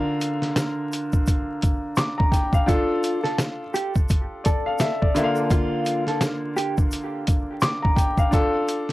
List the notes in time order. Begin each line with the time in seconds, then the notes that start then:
Already playing: D3 D4 F4 A#4 D5 F5
0.21 closed hi-hat, shaker
0.42 snare, closed hi-hat
0.56 snare, closed hi-hat, shaker
0.92 closed hi-hat, shaker
1.13 kick, shaker
1.27 kick, closed hi-hat, shaker
1.62 kick, closed hi-hat, shaker
1.96 D6, snare, closed hi-hat, shaker
2.18 A#5, kick
2.32 G5, kick, snare, closed hi-hat, shaker
2.53 F5, kick, shaker
2.66 D4 F4 A4, kick, closed hi-hat, shaker
3.03 closed hi-hat, shaker
3.24 A4, snare, closed hi-hat
3.39 snare, closed hi-hat, shaker
3.74 G4, closed hi-hat, shaker
3.95 kick, shaker
4.09 kick, closed hi-hat, shaker
4.44 A4 D5, kick, closed hi-hat, shaker
4.66 F5
4.79 E5, snare, closed hi-hat, shaker
5.02 D5, kick
5.15 D3 A#3 D4 F4 E5, closed hi-hat, shaker
5.24 F5
5.36 shaker
5.50 F4, kick, closed hi-hat, shaker
5.86 closed hi-hat, shaker
6.07 A4, snare, closed hi-hat
6.21 snare, closed hi-hat, shaker
6.56 G4, closed hi-hat, shaker
6.77 kick, shaker
6.92 closed hi-hat, shaker
7.27 kick, closed hi-hat, shaker
7.61 D6, snare, closed hi-hat, shaker
7.82 A#5, kick
7.96 G5, kick, closed hi-hat, shaker
8.17 F5, kick, shaker
8.31 D4 F4 A4, kick, closed hi-hat, shaker
8.68 closed hi-hat, shaker
8.89 snare